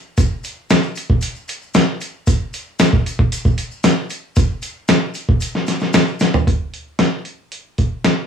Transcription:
0.17 kick loud
0.17 closed hi-hat medium
0.17 maracas medium
0.43 closed hi-hat medium
0.43 maracas medium
0.70 snare loud
0.70 closed hi-hat medium
0.70 maracas medium
0.83 maracas soft
0.95 closed hi-hat medium
0.95 maracas medium
1.10 kick medium
1.21 closed hi-hat medium
1.21 maracas medium
1.35 maracas soft
1.48 closed hi-hat medium
1.48 maracas medium
1.62 maracas soft
1.74 snare loud
1.74 closed hi-hat medium
1.74 maracas medium
2.01 closed hi-hat medium
2.01 maracas medium
2.27 kick medium
2.27 closed hi-hat medium
2.27 maracas medium
2.53 closed hi-hat medium
2.53 maracas medium
2.79 snare loud
2.79 closed hi-hat medium
2.79 maracas loud
2.93 kick medium
3.06 closed hi-hat medium
3.06 maracas medium
3.19 kick medium
3.32 closed hi-hat medium
3.32 maracas loud
3.45 kick medium
3.45 maracas soft
3.58 closed hi-hat medium
3.58 maracas medium
3.71 maracas soft
3.83 snare loud
3.83 closed hi-hat medium
3.83 maracas medium
4.10 closed hi-hat medium
4.10 maracas medium
4.36 kick loud
4.36 closed hi-hat medium
4.36 maracas medium
4.62 closed hi-hat medium
4.62 maracas medium
4.88 snare loud
4.88 closed hi-hat medium
4.88 maracas medium
5.14 closed hi-hat medium
5.14 maracas medium
5.29 kick medium
5.40 closed hi-hat medium
5.40 maracas medium
5.55 snare soft
5.67 snare soft
5.67 closed hi-hat medium
5.67 maracas medium
5.80 snare soft
5.80 maracas soft
5.93 snare loud
5.93 closed hi-hat medium
5.93 maracas medium
6.07 maracas soft
6.19 snare medium
6.19 closed hi-hat medium
6.19 maracas medium
6.33 floor tom medium
6.33 maracas soft
6.47 kick medium
6.47 closed hi-hat medium
6.74 closed hi-hat medium
6.99 snare medium
6.99 closed hi-hat medium
7.25 closed hi-hat soft
7.52 closed hi-hat medium
7.78 kick medium
7.78 closed hi-hat medium
8.04 snare medium
8.04 closed hi-hat medium

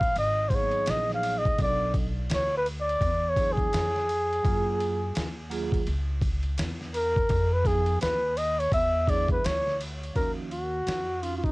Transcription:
0.00 0.12 A#1 medium
0.00 0.17 F5 loud
0.00 kick loud
0.00 ride soft
0.16 0.84 G#1 medium
0.16 0.50 D#5 loud
0.16 ride medium
0.49 1.52 F#3 medium
0.49 0.59 A#3 soft
0.49 1.53 D#4 medium
0.49 1.53 G#4 medium
0.49 0.56 C5 medium
0.49 kick medium
0.49 ride medium
0.55 1.56 B3 medium
0.55 0.92 C#5 loud
0.71 ride soft
0.86 1.55 A#1 loud
0.86 snare loud
0.86 hi-hat pedal medium
0.86 ride medium
0.90 1.12 D#5 loud
1.10 snare soft
1.14 1.39 F5 medium
1.23 ride medium
1.38 1.60 D#5 medium
1.45 kick loud
1.45 ride soft
1.58 2.26 B1 loud
1.58 2.03 F#3 medium
1.58 2.03 B3 medium
1.58 2.03 D4 medium
1.58 2.04 A4 medium
1.58 1.94 D5 medium
1.58 kick loud
1.58 ride medium
1.94 kick medium
1.94 ride medium
2.30 2.98 D2 loud
2.30 snare loud
2.30 hi-hat pedal medium
2.30 ride medium
2.34 2.54 C#5 medium
2.57 2.67 B4 loud
2.66 ride medium
2.81 3.31 D5 loud
2.89 ride soft
3.01 3.69 E2 loud
3.01 kick medium
3.01 ride medium
3.29 3.54 C#5 loud
3.36 3.64 F#3 medium
3.36 3.64 D4 medium
3.36 3.65 E4 medium
3.36 3.65 G#4 medium
3.36 kick medium
3.36 ride medium
3.52 5.29 G#4 medium
3.57 kick loud
3.57 ride soft
3.73 4.41 F2 medium
3.73 snare loud
3.73 hi-hat pedal medium
3.73 ride medium
3.96 snare soft
4.09 ride medium
4.33 ride soft
4.43 5.12 F#2 loud
4.43 4.97 F#3 medium
4.43 4.97 A#3 medium
4.43 4.97 F4 medium
4.43 4.98 G#4 medium
4.43 kick loud
4.43 ride medium
4.80 ride medium
5.15 5.84 D#2 medium
5.15 snare loud
5.15 hi-hat pedal medium
5.15 ride medium
5.50 5.78 F#3 medium
5.50 5.78 A#3 medium
5.50 5.78 F4 medium
5.50 5.79 G#4 loud
5.50 ride medium
5.72 kick loud
5.72 ride soft
5.87 6.55 C#2 loud
5.87 ride medium
6.22 kick medium
6.22 ride medium
6.43 ride soft
6.58 7.26 E2 loud
6.58 snare loud
6.58 hi-hat pedal medium
6.58 ride medium
6.81 snare soft
6.94 7.54 A#4 medium
6.94 ride medium
7.16 kick loud
7.16 ride soft
7.29 7.98 F2 loud
7.29 kick loud
7.29 ride medium
7.53 7.68 B4 medium
7.64 7.92 F3 medium
7.64 7.92 B3 medium
7.64 7.93 D#4 medium
7.64 7.93 G#4 medium
7.64 8.01 G#4 medium
7.64 kick loud
7.64 snare soft
7.64 ride medium
7.86 ride medium
8.01 8.70 D#2 loud
8.01 8.39 B4 loud
8.01 snare loud
8.01 hi-hat pedal medium
8.01 ride medium
8.37 8.61 D#5 loud
8.37 ride medium
8.59 8.73 C#5 medium
8.59 ride soft
8.72 9.40 E2 loud
8.72 9.11 E5 loud
8.72 kick medium
8.72 ride medium
9.07 9.35 F#3 medium
9.07 9.35 D4 medium
9.07 9.35 E4 medium
9.07 9.36 G#4 medium
9.07 9.31 D5 loud
9.07 kick medium
9.07 ride medium
9.28 9.48 B4 loud
9.28 kick medium
9.28 ride soft
9.44 10.12 D2 medium
9.44 9.81 C#5 loud
9.44 snare loud
9.44 hi-hat pedal medium
9.44 ride medium
9.67 snare soft
9.81 ride medium
10.04 ride soft
10.14 10.83 D#2 medium
10.14 10.42 F3 medium
10.14 10.42 C#4 medium
10.14 10.43 D#4 medium
10.14 10.43 F#4 medium
10.14 10.32 A#4 medium
10.14 kick medium
10.14 ride medium
10.51 11.24 F#4 medium
10.51 ride soft
10.87 11.52 F2 medium
10.87 snare medium
10.87 hi-hat pedal soft
10.87 ride medium
11.21 11.52 C#4 medium
11.21 11.52 D#4 medium
11.21 11.23 F4 medium
11.21 11.36 F4 medium
11.21 11.31 F4 medium
11.21 ride medium
11.29 11.52 F#4 medium
11.37 11.46 F4 soft
11.44 11.52 D#4 medium
11.44 kick medium
11.44 ride soft

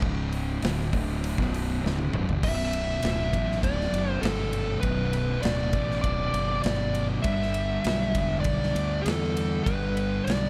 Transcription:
0.00 0.59 C#1 loud
0.00 0.62 C#2 medium
0.00 0.62 G#2 loud
0.00 0.63 C#3 loud
0.00 kick loud
0.33 open hi-hat medium
0.62 0.91 D1 medium
0.62 0.93 D2 medium
0.62 0.93 A2 loud
0.62 0.93 D3 loud
0.62 snare loud
0.62 open hi-hat medium
0.81 snare soft
0.93 1.35 D1 loud
0.93 1.38 D2 medium
0.93 1.38 A2 loud
0.93 1.38 D3 loud
0.93 kick loud
0.93 open hi-hat medium
1.24 open hi-hat medium
1.38 1.80 B0 loud
1.38 1.83 B1 loud
1.38 1.83 F#2 loud
1.38 1.83 B2 loud
1.38 kick loud
1.38 snare soft
1.54 open hi-hat medium
1.83 2.11 C#1 loud
1.83 2.13 C#2 medium
1.83 2.13 G#2 loud
1.83 2.13 C#3 loud
1.83 snare medium
1.99 high tom medium
2.13 2.28 B0 loud
2.13 2.28 B1 medium
2.13 2.28 F#2 loud
2.13 mid tom loud
2.28 2.43 G1 loud
2.28 2.42 G2 medium
2.28 2.43 D3 loud
2.28 floor tom loud
2.43 2.96 B0 medium
2.43 3.35 B1 medium
2.43 3.32 F#2 loud
2.43 3.32 B2 loud
2.43 3.63 E5 medium
2.43 kick loud
2.43 crash loud
2.61 snare soft
2.73 ride medium
3.03 3.30 D1 medium
3.03 snare loud
3.03 ride loud
3.32 3.60 A1 medium
3.32 4.83 B1 medium
3.32 4.83 F#2 medium
3.32 4.82 B2 medium
3.32 kick medium
3.32 ride medium
3.52 snare soft
3.63 3.90 D1 loud
3.63 4.11 D5 medium
3.63 kick loud
3.63 ride loud
3.81 snare soft
3.92 4.19 F#1 medium
3.92 ride medium
4.11 4.26 C5 medium
4.21 4.75 G1 loud
4.21 4.79 A4 medium
4.21 snare loud
4.21 ride loud
4.53 ride medium
4.80 5.36 B0 loud
4.80 5.73 B1 medium
4.80 5.39 B4 medium
4.80 kick loud
4.80 ride loud
4.86 5.73 F#2 loud
4.86 5.73 B2 loud
5.13 ride medium
5.42 5.70 D1 medium
5.42 6.00 D5 medium
5.42 snare loud
5.42 ride loud
5.73 6.00 A1 medium
5.73 7.24 F#2 medium
5.73 7.23 B2 medium
5.73 kick medium
5.73 ride medium
5.77 7.25 B1 medium
5.91 snare soft
6.01 6.31 D1 medium
6.01 6.61 D5 medium
6.01 kick loud
6.01 ride loud
6.33 6.60 F#1 medium
6.33 ride medium
6.62 7.17 G1 loud
6.62 7.06 D5 medium
6.62 snare loud
6.62 ride loud
6.95 ride medium
7.22 7.77 G1 loud
7.22 8.19 G2 medium
7.22 8.40 E5 medium
7.22 kick loud
7.22 ride loud
7.27 8.15 D3 loud
7.27 8.15 G3 loud
7.42 snare soft
7.54 ride medium
7.84 8.12 B1 medium
7.84 snare loud
7.84 ride loud
8.15 8.41 E1 medium
8.15 9.66 D3 medium
8.15 9.65 G3 medium
8.15 kick medium
8.15 ride loud
8.20 9.65 G2 medium
8.40 9.05 D5 loud
8.44 8.72 B1 medium
8.44 kick loud
8.44 ride loud
8.63 snare soft
8.75 9.02 D2 loud
8.75 ride medium
9.02 9.60 A4 loud
9.02 ride loud
9.06 9.59 E2 loud
9.06 snare loud
9.37 ride medium
9.64 10.19 G1 loud
9.64 10.50 G2 loud
9.64 10.27 B4 medium
9.64 kick loud
9.64 ride loud
9.68 10.50 D3 loud
9.68 10.50 G3 loud
9.97 ride medium
10.24 10.50 B1 medium
10.24 10.50 D5 medium
10.24 ride loud
10.30 snare loud

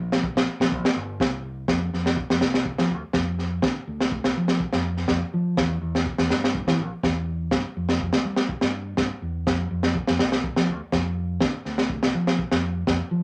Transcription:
0.00 0.21 A#1 medium
0.12 snare medium
0.23 kick medium
0.35 0.46 A#1 medium
0.35 snare medium
0.60 0.71 A#1 loud
0.60 snare medium
0.72 0.84 A#1 loud
0.72 kick medium
0.85 snare medium
0.96 1.18 G1 medium
1.20 1.65 C2 medium
1.20 kick medium
1.20 snare medium
1.68 1.91 F2 medium
1.68 kick medium
1.68 snare medium
1.93 2.15 F2 medium
1.93 snare soft
2.06 snare medium
2.17 kick medium
2.30 2.41 F2 medium
2.30 snare medium
2.41 2.75 C2 medium
2.41 snare medium
2.54 snare medium
2.65 kick medium
2.78 2.92 F3 medium
2.78 snare medium
2.90 3.02 D2 medium
3.13 3.59 F2 medium
3.13 kick medium
3.13 snare medium
3.39 snare soft
3.62 3.75 D3 medium
3.62 kick medium
3.62 snare medium
3.88 4.21 D2 medium
4.00 snare medium
4.12 kick medium
4.24 4.35 C2 medium
4.24 snare medium
4.37 4.59 F3 medium
4.48 snare medium
4.60 kick medium
4.73 5.06 F2 medium
4.73 snare medium
4.97 snare soft
5.08 5.21 F2 medium
5.08 kick medium
5.08 snare medium
5.34 5.56 F3 medium
5.57 5.80 E2 loud
5.57 kick medium
5.57 snare medium
5.81 6.04 E2 medium
5.95 snare medium
6.06 kick medium
6.18 6.29 E2 medium
6.18 snare medium
6.30 6.64 G2 medium
6.30 snare medium
6.44 snare medium
6.55 kick medium
6.67 6.80 E3 medium
6.67 snare medium
6.79 6.91 A#1 medium
7.03 7.48 E2 medium
7.03 kick medium
7.03 snare medium
7.51 7.64 G2 medium
7.51 kick medium
7.51 snare medium
7.77 8.11 F2 medium
7.89 snare medium
8.01 kick medium
8.12 8.23 D2 medium
8.12 snare medium
8.25 8.47 G3 medium
8.36 snare medium
8.49 kick medium
8.61 8.95 G2 medium
8.61 snare medium
8.97 9.10 G2 medium
8.97 kick medium
8.97 snare medium
9.22 9.44 E2 medium
9.47 9.69 F2 medium
9.47 kick medium
9.47 snare medium
9.71 9.93 F2 medium
9.83 snare medium
9.95 kick medium
10.07 10.19 F2 medium
10.07 snare medium
10.19 10.54 C2 medium
10.19 snare medium
10.32 snare medium
10.44 kick medium
10.56 10.70 F3 medium
10.56 snare medium
10.68 10.80 D2 medium
10.92 11.37 F2 medium
10.92 kick medium
10.92 snare medium
11.40 11.53 D3 medium
11.40 kick medium
11.40 snare medium
11.65 12.00 D2 medium
11.65 snare soft
11.78 snare medium
11.90 kick medium
12.03 12.14 C2 medium
12.03 snare medium
12.14 12.37 F3 medium
12.27 snare medium
12.39 kick medium
12.52 12.85 F2 medium
12.52 snare medium
12.87 12.99 F2 medium
12.87 kick medium
12.87 snare medium
13.11 13.23 F3 medium

